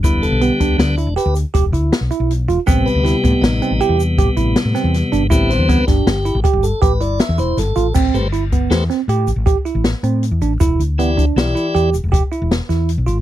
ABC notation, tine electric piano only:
X:1
M:7/4
L:1/8
Q:1/4=159
K:Am
V:1 name="Tine electric piano"
E2 B, D2 E G2 G E2 E2 F | C2 E B,2 C G2 G E2 C2 D | E2 B, D2 E G2 G E2 E2 F | C2 E B,2 C G2 G E2 C2 D |
E2 B, D2 E G2 G E2 E2 F |]